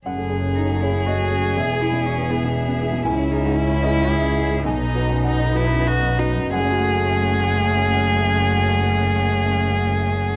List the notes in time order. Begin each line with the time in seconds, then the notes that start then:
0.06 F#1 F#2 A3 G#4 C#5 F#5
0.16 A3
0.30 C#4 G#4
0.42 C#3
0.56 D#4
0.68 A3
0.81 C#4 E4 G#4 C#5
0.93 C#3
1.06 F#4 D#5
1.18 A3
1.30 C#4 G#4
1.43 C#3
1.56 E1 E2 B3 G#4 E5
1.69 B3
1.81 E4 G#4
1.92 B2
2.06 C#4
2.18 B3
2.30 B3 E4 G#4
2.44 B2
2.68 B3
2.81 E4 G#4
2.93 B2
3.04 C#2 C#4 E4 G#5
3.18 C#4
3.31 D#4 E4 G#4
3.45 G#2
3.58 E4
3.70 C#4
3.83 E4 G#4 D#5
3.96 G#2
4.11 G#4 E5
4.23 C#4
4.37 E4 G#4
4.50 G#2
4.65 B1 D#4 B4 D#5 G#5
4.79 D#4
4.95 F#4 B4
5.10 F#2
5.24 D#4 F#5
5.40 D#4
5.54 E4 F#4 B4
5.70 F#2
5.87 F#4
6.02 D#4
6.18 D#4 F#4 B4
6.34 F#2
6.51 F#1 F#2 A3 C#4 G#4 F#5
6.58 F#3
6.65 C#4
6.72 F#4
6.79 A3
6.86 F#5